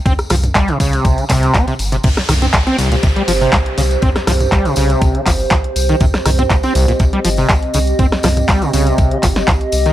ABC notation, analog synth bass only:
X:1
M:4/4
L:1/8
Q:"Swing 16ths" 1/4=121
K:Cphr
V:1 name="Analog synth bass" clef=bass
z C,, z C,, z C,, z G,,, | z C,, z C,, z G,,, z C,, | z C,, z C,, z G,,, z C,, | z C,, z C,, z G,,, z C,, |
z C,, z C,, z G,,, z C,, |]